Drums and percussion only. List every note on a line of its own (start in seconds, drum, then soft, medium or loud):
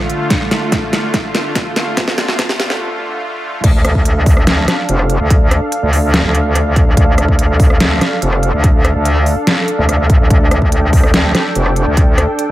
0.10 closed hi-hat medium
0.30 kick medium
0.30 snare medium
0.30 closed hi-hat medium
0.51 snare medium
0.51 closed hi-hat medium
0.72 kick medium
0.72 snare medium
0.72 closed hi-hat medium
0.93 snare medium
0.93 closed hi-hat medium
1.14 kick loud
1.14 snare medium
1.14 closed hi-hat medium
1.35 snare medium
1.35 closed hi-hat medium
1.55 kick medium
1.55 snare medium
1.55 closed hi-hat medium
1.76 snare medium
1.76 closed hi-hat medium
1.97 kick medium
1.97 snare medium
1.97 closed hi-hat medium
2.08 snare medium
2.18 snare medium
2.18 closed hi-hat soft
2.28 snare medium
2.39 kick medium
2.39 snare loud
2.39 closed hi-hat medium
2.49 snare medium
2.60 snare loud
2.60 closed hi-hat medium
2.70 snare medium
3.64 kick loud
3.64 closed hi-hat medium
3.64 crash loud
3.85 cross-stick medium
3.85 closed hi-hat medium
3.95 kick medium
4.05 closed hi-hat medium
4.26 kick loud
4.26 open hi-hat loud
4.37 cross-stick medium
4.47 snare loud
4.47 closed hi-hat medium
4.68 cross-stick medium
4.68 snare medium
4.68 closed hi-hat medium
4.89 closed hi-hat medium
4.99 cross-stick medium
5.10 closed hi-hat medium
5.30 kick loud
5.30 closed hi-hat medium
5.51 cross-stick medium
5.51 closed hi-hat medium
5.72 closed hi-hat medium
5.93 open hi-hat medium
6.14 snare loud
6.14 closed hi-hat medium
6.35 closed hi-hat medium
6.55 cross-stick medium
6.55 closed hi-hat medium
6.76 kick loud
6.76 closed hi-hat medium
6.97 kick loud
6.97 closed hi-hat medium
7.18 cross-stick medium
7.18 closed hi-hat medium
7.28 kick medium
7.39 closed hi-hat medium
7.60 kick loud
7.60 open hi-hat loud
7.70 cross-stick medium
7.80 snare loud
7.80 closed hi-hat medium
8.01 cross-stick medium
8.01 snare medium
8.01 closed hi-hat medium
8.22 closed hi-hat medium
8.33 cross-stick medium
8.43 closed hi-hat medium
8.64 kick loud
8.64 closed hi-hat medium
8.85 cross-stick medium
8.85 closed hi-hat medium
9.05 closed hi-hat medium
9.26 open hi-hat medium
9.47 snare loud
9.47 closed hi-hat medium
9.68 closed hi-hat medium
9.89 cross-stick medium
9.89 closed hi-hat medium
10.10 kick loud
10.10 closed hi-hat medium
10.30 kick loud
10.30 closed hi-hat medium
10.51 cross-stick medium
10.51 closed hi-hat medium
10.62 kick medium
10.72 closed hi-hat medium
10.93 kick loud
10.93 open hi-hat medium
11.03 cross-stick medium
11.14 snare loud
11.14 closed hi-hat medium
11.35 cross-stick medium
11.35 snare medium
11.35 closed hi-hat medium
11.55 closed hi-hat medium
11.66 cross-stick medium
11.76 closed hi-hat medium
11.97 kick loud
11.97 closed hi-hat medium
12.18 cross-stick medium
12.18 closed hi-hat medium
12.39 closed hi-hat medium